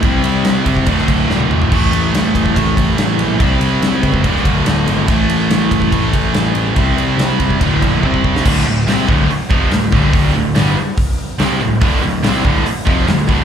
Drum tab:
CC |----------------|x---------------|----------------|----------------|
RD |x-x-x-x-x-x-----|--x-x-x-x-x-x-x-|x-x-x-x-x-x-x-x-|x-x-x-x-x-x-x-x-|
HH |----------------|----------------|----------------|----------------|
SD |----o----o--o---|----o-------o---|----o----o--o---|----o-------o---|
T1 |-------------o--|----------------|----------------|----------------|
T2 |--------------o-|----------------|----------------|----------------|
FT |---------------o|----------------|----------------|----------------|
BD |o-----ooo-o-----|o-----ooo-o-----|o-----ooo-o-----|o-----ooo-o-----|

CC |----------------|x---------------|----------------|----------------|
RD |x-x-x-x-x-x-----|----------------|----------------|----------------|
HH |----------------|----o---o---o---|o---o---o---o---|o---o---o---o---|
SD |----o----------o|----o-------o-o-|----o-------o---|----o-------o-o-|
T1 |----------------|----------------|----------------|----------------|
T2 |----------------|----------------|----------------|----------------|
FT |----------------|----------------|----------------|----------------|
BD |o-----ooo-o-ooo-|o-----o---o---o-|o-------o-------|o-----o---o---o-|